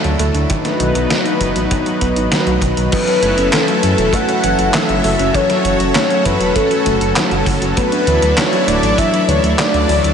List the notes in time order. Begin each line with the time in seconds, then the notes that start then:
Already playing: F#3 D4 E4 A4
0.04 D2 F#3, closed hi-hat
0.19 D2 A3, closed hi-hat
0.34 D2 D4, closed hi-hat
0.50 D#3 F#3 B3 D#4 B4, kick, closed hi-hat
0.65 F#3, snare, closed hi-hat
0.80 B1 D#3, closed hi-hat
0.95 B1 F#3, closed hi-hat
1.10 B3, snare, closed hi-hat
1.25 D#4, closed hi-hat
1.41 F#1 D#3, kick, closed hi-hat
1.56 A1 F#3, closed hi-hat
1.71 D#3, kick, closed hi-hat
1.86 F#3, closed hi-hat
2.01 B1 B3, kick, closed hi-hat
2.16 A1 D#4, closed hi-hat
2.32 D#3, snare, closed hi-hat
2.47 B1 F#3, closed hi-hat
2.62 B1 D#3, kick, closed hi-hat
2.77 B1 F#3, closed hi-hat
2.92 E3 F#3 C#4 E4 A4 B4, kick, closed hi-hat, crash
3.07 F#3, closed hi-hat
3.22 F#1 A3, closed hi-hat
3.38 F#1 C#4, closed hi-hat
3.53 E3 A4, snare, clap, closed hi-hat
3.68 F#3, closed hi-hat
3.83 F#2 E3, closed hi-hat
3.98 E1 F#3, closed hi-hat
4.13 A3 F#5, kick, closed hi-hat
4.28 C#4, closed hi-hat
4.43 F#1 E3, closed hi-hat
4.59 F#1 F#3, closed hi-hat
4.74 E3 E5, snare, clap, closed hi-hat
4.89 F#1 F#3, closed hi-hat
5.04 F#1 A3, open hi-hat
5.19 F#1 C#4, closed hi-hat
5.34 E3 F#4 C#5, kick, closed hi-hat
5.49 F#3, snare, closed hi-hat
5.64 F#1 E3, closed hi-hat
5.79 F#1 F#3, closed hi-hat
5.95 A3, snare, clap, closed hi-hat
6.10 C#4, closed hi-hat
6.25 F#2 E3 B4, kick, closed hi-hat
6.40 E1 F#3, closed hi-hat
6.56 E3 A4, kick, closed hi-hat
6.71 F#3, closed hi-hat
6.86 F#1 A3, kick, closed hi-hat
7.01 F#1 C#4, closed hi-hat
7.16 E3, snare, clap, closed hi-hat
7.31 F#1 F#3, closed hi-hat
7.46 F#1 E3, kick, open hi-hat
7.62 F#1 F#3, closed hi-hat
7.77 A3 D4 E4 B4, kick, closed hi-hat
7.92 D4, closed hi-hat
8.07 D2 E3, closed hi-hat
8.22 D2 F#3, closed hi-hat
8.37 E3 C#5, snare, clap, closed hi-hat
8.53 F#3, closed hi-hat
8.67 D1 A3 D5, closed hi-hat
8.83 A1 D4, closed hi-hat
8.98 E3 E5, kick, closed hi-hat
9.13 F#3, closed hi-hat
9.28 D2 E3 C#5, closed hi-hat
9.43 D2 F#3, closed hi-hat
9.59 A3 D5, snare, clap, closed hi-hat
9.74 D2 D4, closed hi-hat
9.89 D2 E3, open hi-hat
10.04 D2 F#3, closed hi-hat